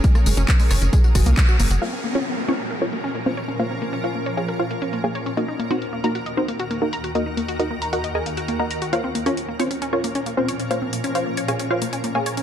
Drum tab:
CC |----------------|x---------------|----------------|----------------|
HH |x-oxxooxx-oxx-ox|x-xxx-xxx-xxx-xx|x-xxx-xxx-xxx-xx|x-xxx-xxx-xxx-xx|
TB |xxxxxxxxxxxxxxxx|----------------|----------------|----------------|
CP |----x-x-----x---|----------------|----------------|----------------|
SD |-r----r---r-----|----------------|----------------|----------------|
BD |o---o---o-o-o---|----------------|----------------|----------------|

CC |----------------|----------------|----------------|
HH |x-xxx-xxx-xxx-xx|x-xxx-xxx-xxx-xx|x-xxx-xxx-xxx-xx|
TB |----------------|----------------|----------------|
CP |----------------|----------------|----------------|
SD |----------------|----------------|----------------|
BD |----------------|----------------|----------------|